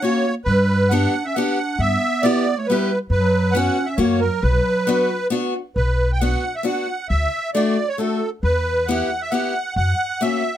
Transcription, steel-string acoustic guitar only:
0.02 A#3 C#4 F#4
0.91 B3 D4 G4
1.36 B3 D4 G4
2.23 B3 E4 G4
2.70 B3 E4 G4
3.55 B3 C#4 F#4
3.98 A#3 C#4 F#4
4.87 B3 D4 F#4
5.30 B3 D4 F#4
6.21 B3 D4 F#4
6.63 B3 D4 F#4
7.55 A3 D4 F#4
7.98 A3 D4 F#4
8.88 B3 E4 G4
9.32 B3 E4 G4
10.21 A#3 C#4 F#4

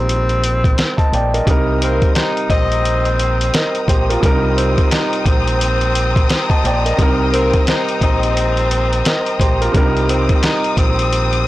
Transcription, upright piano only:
Already playing: C3 G3 D#4 F4 A#4
0.97 D#5 A5
1.14 D5 G5
1.33 A#4 D#5
1.45 C3 G3 D#4
1.51 A#4
3.54 A#4 D#5
3.89 G4 C5
4.10 F4 A#4
4.20 C3 G3 D4
4.26 A#4
4.30 D#4
6.49 D#5 A5
6.66 D5 G5
6.85 A#4 D#5
6.97 C3 G3 D#4
7.02 A#4
9.06 A#4 D#5
9.40 G4 C5
9.61 F4 A#4
9.71 C3 G3 D4
9.77 A#4
9.82 D#4

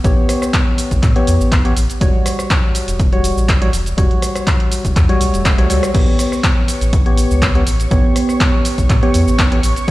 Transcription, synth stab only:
0.04 B3 G4 C#5
1.16 B3 G4 C#5
1.65 B3 G4 C#5
2.01 G3 F#4 C#5
3.12 G3 F#4 C#5
3.61 G3 F#4 C#5
3.97 G3 F#4 C#5
5.09 G3 F#4 C#5
5.58 G3 F#4 C#5
5.70 G3 F#4 C#5
5.94 B3 G4 C#5
7.06 B3 G4 C#5
7.55 B3 G4 C#5
7.91 B3 G4 C#5
9.03 B3 G4 C#5
9.52 B3 G4 C#5
9.88 G3

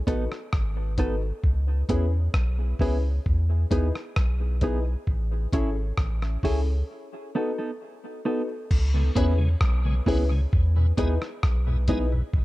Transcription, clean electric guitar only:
0.07 B3 D#4 A4
0.99 B3 D#4 A4
1.89 B3 E4 G#4
2.81 B3 E4 G#4
3.71 B3 D#4 G#4
4.63 B3 D#4 G#4
5.53 C#4 E4 G#4
6.44 C#4 E4 G#4
7.35 B3 D#4 A4
7.58 B3 D#4 A4
8.25 B3 D#4 A4
9.16 B3 E4 G#4
10.07 B3 E4 G#4
10.98 B3 D#4 G#4
11.89 B3 D#4 G#4

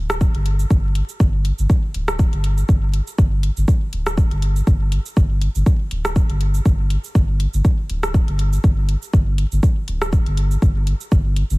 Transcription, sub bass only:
Already playing: D1
0.35 G1
0.70 G1
1.20 G1
1.59 G1
1.94 D1
2.33 G1
2.69 G1
3.18 G1
3.57 G1
3.93 D1
4.31 G1
4.67 G1
5.17 G1
5.55 G1
5.91 D1
6.30 G1
6.65 G1
7.15 G1
7.54 G1
7.89 D1
8.28 G1
8.64 G1
9.13 G1
9.52 G1
9.88 D1
10.26 G1
10.62 G1
11.12 G1
11.50 G1

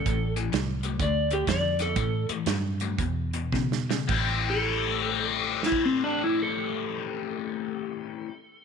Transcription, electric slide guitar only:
Already playing: A4
1.02 D5
1.33 G4
1.49 D5
1.82 A4
4.50 A4
5.66 E4
5.85 C4
6.04 D4
6.24 E4
6.42 A4

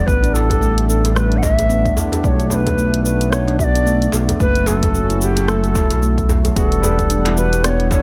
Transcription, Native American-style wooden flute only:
0.07 B4
0.34 A4
0.88 A4
1.15 B4 C#5
1.37 F#5
1.43 E5
2.24 D5
2.28 C#5
2.50 C#5
2.55 B4
3.04 B4
3.31 C#5
3.59 E5
3.64 D5
4.41 B4
4.67 A4
5.22 G4
5.49 A4
6.57 G#4
6.68 A4
7.37 B4
7.64 D5
7.69 C#5
7.91 C#5

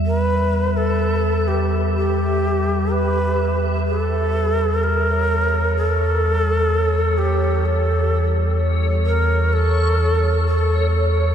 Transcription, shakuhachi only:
0.06 A#4
0.18 B4
0.77 A4
1.48 G4
1.96 G4
2.93 B4
3.87 G#4
3.98 A4
4.84 A#4
5.77 A4
7.18 G4
7.65 A4
9.06 A#4
9.53 A4
10.47 A4

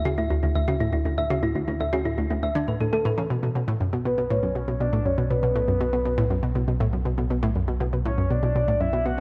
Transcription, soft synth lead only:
4.05 B4
4.31 C#5
4.80 D5
5.06 C#5
5.31 B4
8.06 C#5
8.31 D5
8.81 E5
9.05 F#5

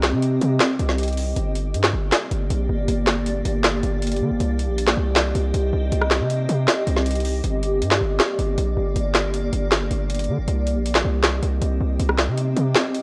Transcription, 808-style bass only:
Already playing: C2
0.13 C3
0.41 C3
0.79 C2
1.36 G1
1.74 G2
1.93 G1
2.31 G1
2.50 A#1
2.69 G1
2.88 G1
3.45 G1
3.83 G1
4.21 D3
4.31 G1
4.40 C2
4.69 A#1
4.97 C2
5.35 C2
5.54 C2
5.73 C2
5.92 C2
6.20 C3
6.49 C3
6.87 C2
7.44 G1
7.82 G2
8.01 G1
8.39 G1
8.58 A#1
8.77 G1
8.96 G1
9.53 G1
9.91 G1
10.29 D3
10.38 G1
10.48 C2
10.76 A#1
11.05 C2
11.43 C2
11.62 C2
11.81 C2
12.00 C2
12.28 C3
12.57 C3

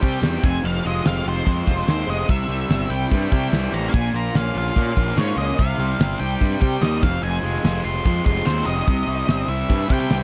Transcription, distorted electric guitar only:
Already playing: G3 C4
0.02 G4
0.22 C4
0.43 F2
0.64 F2
0.84 G#3
1.05 C4
1.26 F4
1.45 G#3
1.67 F4
1.87 C4
2.07 G#3
2.27 C3
2.49 G3
2.69 C4
2.90 E4
3.11 G3
3.32 E4
3.52 C4
3.73 G3
3.93 A#2
4.13 A#3
4.35 C#4
4.55 F4
4.75 A#3
4.96 F4
5.17 C#4
5.38 A#3
5.58 C3
5.79 G3
6.00 C4
6.20 G4
6.40 G3
6.61 G4
6.82 C4
7.03 F2
7.23 F2
7.43 G#3
7.64 C4
7.84 F4
8.06 G#3
8.26 F4
8.46 C4
8.67 G#3
8.87 C3
9.07 G3
9.28 C4
9.49 E4
9.69 G3
9.89 E4
10.10 C4

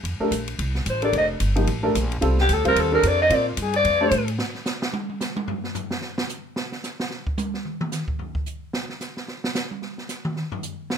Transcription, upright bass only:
0.03 F2
0.20 muted upright bass stroke
0.31 A#1
0.59 C2
0.86 A1
1.13 F1
1.40 G1
1.68 A1
1.95 A#1
2.22 C2
2.49 D2
2.75 D#2
3.03 F2
3.30 A#2
3.57 G2
3.84 F2
4.11 A2

